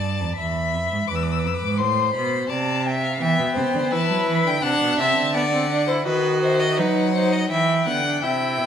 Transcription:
0.00 0.22 G2 medium
0.00 0.36 D5 medium
0.00 0.35 A5 medium
0.20 0.38 F2 medium
0.36 0.75 E2 medium
0.36 1.08 E5 medium
0.36 1.09 B5 medium
0.74 0.91 F2 medium
0.92 0.99 G#2 medium
1.08 1.46 E2 medium
1.08 1.81 B4 medium
1.08 1.17 D6 medium
1.15 1.24 E6 medium
1.23 1.33 D6 medium
1.31 1.41 E6 medium
1.39 1.48 D6 medium
1.44 1.62 F2 medium
1.44 1.55 E6 medium
1.54 1.79 D6 medium
1.62 1.81 G#2 medium
1.78 2.15 A2 medium
1.78 2.51 C5 medium
1.78 2.13 C6 medium
2.13 2.49 B2 medium
2.13 2.48 B5 medium
2.49 3.19 C3 medium
2.49 2.85 D5 medium
2.49 2.87 A5 medium
2.85 3.19 E5 medium
2.85 3.03 G5 medium
3.04 3.23 F5 medium
3.20 3.38 E3 medium
3.20 3.93 B3 medium
3.20 3.54 E5 loud
3.20 3.92 G5 medium
3.39 3.46 B2 medium
3.55 3.63 C3 medium
3.55 3.92 C5 loud
3.74 3.81 D3 medium
3.91 4.09 E3 medium
3.91 4.62 E4 medium
3.91 4.48 B4 loud
3.91 4.28 A5 medium
4.09 4.17 F#3 medium
4.28 4.45 E3 medium
4.28 4.63 B5 medium
4.45 4.63 D3 medium
4.45 4.64 G5 loud
4.62 4.80 C3 medium
4.62 5.01 D4 medium
4.62 4.98 F#5 loud
4.62 5.36 A5 medium
4.81 4.98 B2 medium
4.98 5.16 C3 medium
4.98 5.35 C4 medium
4.98 5.33 E5 loud
5.17 6.05 D3 medium
5.34 5.43 B3 medium
5.34 5.86 D5 loud
5.34 6.06 F#5 medium
5.53 5.70 C4 medium
5.72 5.89 D4 medium
5.87 6.06 E4 medium
5.87 5.94 C5 medium
6.04 6.80 D#3 medium
6.04 6.80 F#4 medium
6.04 6.40 B4 medium
6.04 6.45 D#5 medium
6.42 6.61 C5 medium
6.42 6.81 E5 medium
6.60 6.79 D#5 medium
6.78 7.50 F#3 medium
6.78 7.14 D#4 medium
6.78 7.13 B4 medium
6.78 7.50 F#5 medium
7.14 7.50 D#4 medium
7.14 7.34 C5 medium
7.32 7.49 D#5 medium
7.50 7.86 E3 medium
7.50 7.88 E4 medium
7.50 7.85 E5 medium
7.50 8.24 G5 medium
7.86 8.22 D3 medium
7.86 8.05 B3 medium
7.86 8.21 F#5 medium
8.05 8.24 D4 medium
8.22 8.60 C3 medium
8.22 8.66 E4 medium
8.22 8.66 E5 medium
8.22 8.66 G5 medium
8.58 8.66 B2 medium

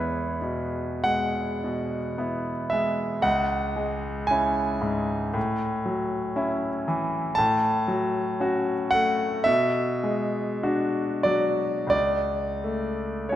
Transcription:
0.00 1.02 E2 soft
0.00 0.15 G#3 soft
0.00 0.37 B3 soft
0.00 0.38 E4 soft
0.00 1.05 B4 soft
0.00 3.29 C#5 medium
0.42 1.42 B2 soft
1.04 1.98 G#3 soft
1.04 2.72 F#5 medium
1.64 2.52 B2 soft
2.18 2.68 B3 soft
2.18 2.69 E4 soft
2.70 3.26 G#3 soft
2.70 3.24 E5 medium
3.22 5.30 C#2 medium
3.22 4.30 F#5 medium
3.76 4.62 G#3 soft
4.27 4.80 C#4 soft
4.27 4.79 E4 soft
4.27 7.38 G#5 medium
4.81 5.35 G#2 soft
5.34 7.35 A2 medium
5.86 6.69 F#3 soft
6.36 6.85 C#4 soft
6.36 6.85 E4 soft
6.88 7.39 E3 soft
7.35 9.43 A2 medium
7.35 8.92 A5 medium
7.88 8.72 F#3 soft
8.40 8.90 C#4 soft
8.40 8.90 F#4 soft
8.91 9.47 A3 soft
8.91 9.46 F#5 medium
9.44 11.88 B2 medium
9.44 11.23 E5 medium
10.03 11.00 G#3 soft
10.63 11.22 D4 soft
10.63 11.22 F#4 soft
11.23 11.93 F#3 soft
11.23 11.88 D5 medium
11.87 13.36 C#2 soft
11.87 13.31 D5 medium
12.64 13.36 A3 soft
13.29 13.36 C#4 soft
13.29 13.36 F#4 soft
13.29 13.36 C#5 soft

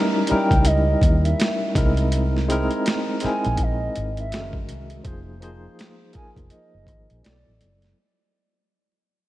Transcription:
0.00 0.29 G3 medium
0.00 0.29 C#4 medium
0.00 0.30 D#4 medium
0.00 0.31 E4 medium
0.00 0.32 A#4 medium
0.27 1.57 G3 medium
0.27 1.57 C#4 medium
0.27 1.57 D#4 medium
0.27 1.58 E4 medium
0.27 0.68 G5 loud
0.27 closed hi-hat medium
0.31 1.58 A#4 medium
0.31 muted fingered electric bass stroke soft
0.51 0.94 C#2 medium
0.51 kick medium
0.51 closed hi-hat soft
0.65 1.24 D#5 medium
0.65 closed hi-hat medium
1.01 1.33 D#2 medium
1.01 kick medium
1.01 closed hi-hat medium
1.25 1.72 E5 medium
1.25 closed hi-hat soft
1.40 snare loud
1.40 closed hi-hat medium
1.75 2.67 C2 medium
1.75 2.39 G#3 medium
1.75 2.40 C4 medium
1.75 2.40 D#4 medium
1.75 2.41 E4 medium
1.75 2.41 A#4 medium
1.75 kick medium
1.75 closed hi-hat medium
1.97 closed hi-hat soft
2.12 closed hi-hat medium
2.37 snare soft
2.48 3.13 G#3 medium
2.48 3.13 C4 medium
2.48 3.13 D#4 medium
2.48 3.14 E4 medium
2.48 3.14 A#4 medium
2.48 closed hi-hat medium
2.71 closed hi-hat soft
2.86 snare medium
2.86 closed hi-hat medium
3.20 4.31 G#3 medium
3.20 4.32 C4 medium
3.20 4.32 D#4 medium
3.20 4.32 E4 medium
3.20 muted fingered electric bass stroke soft
3.20 closed hi-hat medium
3.24 4.33 A#4 medium
3.24 3.64 G#5 medium
3.24 snare soft
3.45 3.88 A#1 medium
3.45 closed hi-hat soft
3.57 kick medium
3.57 closed hi-hat medium
3.63 4.18 D#5 medium
3.96 4.34 G#1 medium
3.96 closed hi-hat medium
4.17 4.66 E5 medium
4.17 closed hi-hat soft
4.31 4.71 F#1 medium
4.31 4.96 D#3 medium
4.31 4.96 G#3 medium
4.31 4.97 C#4 medium
4.31 4.97 F#4 medium
4.31 4.41 A4 medium
4.31 snare medium
4.31 closed hi-hat medium
4.42 5.01 A#4 medium
4.53 kick medium
4.69 5.00 C2 medium
4.69 closed hi-hat medium
4.90 closed hi-hat soft
5.04 5.66 F1 medium
5.04 5.36 F3 medium
5.04 5.37 A#3 medium
5.04 5.37 D#4 medium
5.04 5.38 G#4 medium
5.04 kick medium
5.04 closed hi-hat medium
5.08 5.38 C5 medium
5.40 6.05 F3 medium
5.40 6.05 A#3 medium
5.40 6.06 D#4 medium
5.40 6.06 G#4 medium
5.40 6.07 C5 medium
5.40 closed hi-hat medium
5.79 snare medium
5.79 closed hi-hat medium
6.13 7.23 F3 medium
6.13 7.23 A#3 medium
6.13 7.24 D#4 medium
6.13 7.25 G#4 medium
6.13 7.25 A#4 medium
6.13 6.30 G#5 medium
6.13 muted fingered electric bass stroke soft
6.13 kick medium
6.13 closed hi-hat medium
6.36 6.49 F1 medium
6.36 kick medium
6.36 closed hi-hat soft
6.50 7.20 D#5 medium
6.50 closed hi-hat medium
6.74 6.88 F#1 medium
6.87 7.06 G#1 medium
6.87 kick medium
6.87 closed hi-hat medium
7.10 7.23 A#1 medium
7.10 closed hi-hat soft
7.22 7.43 B1 medium
7.22 7.88 F#3 medium
7.22 7.88 B3 medium
7.22 7.89 E4 medium
7.22 7.89 A4 medium
7.22 7.78 D5 medium
7.22 snare medium
7.22 closed hi-hat medium
7.27 7.33 C#5 medium
7.33 7.93 D5 medium
7.48 7.59 A1 medium
7.61 7.92 F#1 medium
7.61 closed hi-hat medium
7.82 snare soft
7.82 closed hi-hat soft

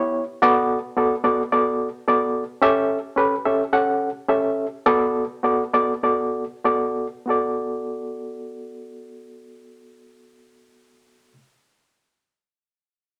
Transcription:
0.00 0.23 B3 medium
0.00 0.23 E4 medium
0.00 0.23 G4 medium
0.00 0.23 C#5 medium
0.42 0.78 B3 loud
0.42 0.78 F#4 loud
0.42 0.78 A4 loud
0.42 0.78 D5 loud
0.96 1.14 B3 medium
0.96 1.14 F#4 medium
0.96 1.15 A4 medium
0.96 1.15 D5 medium
1.24 1.42 B3 medium
1.24 1.42 F#4 medium
1.24 1.42 A4 medium
1.24 1.42 D5 loud
1.52 1.88 B3 medium
1.52 1.88 F#4 medium
1.52 1.88 A4 medium
1.52 1.88 D5 loud
2.08 2.43 B3 medium
2.08 2.43 F#4 medium
2.08 2.43 A4 medium
2.08 2.43 D5 loud
2.62 2.97 C#4 loud
2.62 2.98 G4 loud
2.62 2.98 A4 loud
2.62 2.98 E5 loud
3.16 3.34 C#4 medium
3.16 3.35 G4 medium
3.16 3.35 A4 medium
3.16 3.35 B4 loud
3.45 3.63 C#4 medium
3.45 3.63 G4 medium
3.45 3.63 A4 medium
3.45 3.63 E5 medium
3.73 4.09 C#4 medium
3.73 4.09 G4 medium
3.73 4.09 A4 medium
3.73 4.09 F#5 loud
4.29 4.66 C#4 medium
4.29 4.66 G4 medium
4.29 4.66 A4 medium
4.29 4.66 E5 medium
4.86 5.24 B3 loud
4.86 5.24 F#4 medium
4.86 5.24 A4 loud
4.86 5.24 D5 loud
5.43 5.63 B3 medium
5.43 5.63 F#4 medium
5.43 5.63 A4 medium
5.43 5.63 D5 medium
5.74 5.93 B3 medium
5.74 5.93 F#4 medium
5.74 5.93 A4 medium
5.74 5.93 D5 loud
6.03 6.43 B3 medium
6.03 6.44 F#4 medium
6.03 6.44 A4 medium
6.03 6.44 D5 medium
6.64 7.06 B3 medium
6.64 7.06 F#4 medium
6.64 7.06 A4 medium
6.64 7.07 D5 loud
7.26 11.32 B3 medium
7.26 11.33 F#4 medium
7.26 11.33 A4 medium
7.30 11.34 D5 medium

